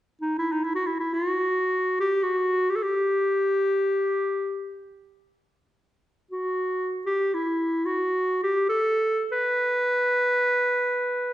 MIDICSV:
0, 0, Header, 1, 2, 480
1, 0, Start_track
1, 0, Tempo, 500000
1, 10881, End_track
2, 0, Start_track
2, 0, Title_t, "Clarinet"
2, 0, Program_c, 0, 71
2, 206, Note_on_c, 0, 63, 60
2, 355, Note_off_c, 0, 63, 0
2, 369, Note_on_c, 0, 64, 71
2, 499, Note_on_c, 0, 63, 61
2, 514, Note_off_c, 0, 64, 0
2, 616, Note_on_c, 0, 64, 61
2, 631, Note_off_c, 0, 63, 0
2, 715, Note_off_c, 0, 64, 0
2, 721, Note_on_c, 0, 66, 68
2, 830, Note_on_c, 0, 64, 65
2, 844, Note_off_c, 0, 66, 0
2, 950, Note_off_c, 0, 64, 0
2, 954, Note_on_c, 0, 64, 67
2, 1092, Note_on_c, 0, 66, 77
2, 1106, Note_off_c, 0, 64, 0
2, 1911, Note_off_c, 0, 66, 0
2, 1922, Note_on_c, 0, 67, 84
2, 2140, Note_on_c, 0, 66, 72
2, 2155, Note_off_c, 0, 67, 0
2, 2590, Note_on_c, 0, 67, 67
2, 2604, Note_off_c, 0, 66, 0
2, 2646, Note_on_c, 0, 69, 57
2, 2661, Note_off_c, 0, 67, 0
2, 2716, Note_on_c, 0, 67, 78
2, 2731, Note_off_c, 0, 69, 0
2, 4596, Note_off_c, 0, 67, 0
2, 6058, Note_on_c, 0, 66, 57
2, 6728, Note_off_c, 0, 66, 0
2, 6775, Note_on_c, 0, 67, 69
2, 7045, Note_on_c, 0, 64, 64
2, 7060, Note_off_c, 0, 67, 0
2, 7541, Note_on_c, 0, 66, 75
2, 7555, Note_off_c, 0, 64, 0
2, 8088, Note_off_c, 0, 66, 0
2, 8096, Note_on_c, 0, 67, 73
2, 8297, Note_off_c, 0, 67, 0
2, 8342, Note_on_c, 0, 69, 81
2, 8895, Note_off_c, 0, 69, 0
2, 8946, Note_on_c, 0, 71, 87
2, 10881, Note_off_c, 0, 71, 0
2, 10881, End_track
0, 0, End_of_file